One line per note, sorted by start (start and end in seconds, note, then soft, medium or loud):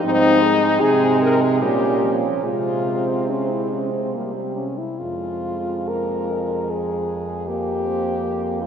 0.04 0.77 G#2 medium
0.04 0.76 C4 medium
0.04 0.42 C4 loud
0.04 0.83 D#4 loud
0.42 1.64 G#3 loud
0.81 1.63 C3 medium
0.81 1.60 C4 medium
0.81 1.21 G#4 loud
1.22 1.43 A#4 loud
1.42 1.62 G#4 loud
1.60 2.28 A#2 medium
1.60 2.05 G3 medium
1.60 2.46 C#4 medium
1.60 2.14 G4 loud
2.04 2.44 F3 medium
2.43 4.11 C3 medium
2.43 4.17 G#3 medium
2.43 4.53 C4 medium
2.43 3.31 F4 medium
3.30 3.51 C#4 medium
3.50 3.73 E4 medium
3.72 3.92 C#4 medium
3.93 4.12 C4 medium
4.13 4.65 C3 medium
4.13 4.66 G3 medium
4.13 4.34 A#3 medium
4.35 4.56 C4 medium
4.56 4.79 C#4 medium
4.78 5.00 E4 medium
4.99 8.67 F2 medium
4.99 7.44 G#3 medium
4.99 5.90 F4 medium
5.88 6.33 A#3 medium
5.88 6.72 A#4 medium
6.31 7.48 G#3 medium
6.71 7.49 G#4 medium
7.47 7.88 A#3 medium
7.47 8.67 A#3 medium
7.47 8.60 G4 medium
7.86 8.25 C4 medium
8.24 8.63 A#3 medium
8.62 8.67 C4 medium
8.62 8.67 F4 medium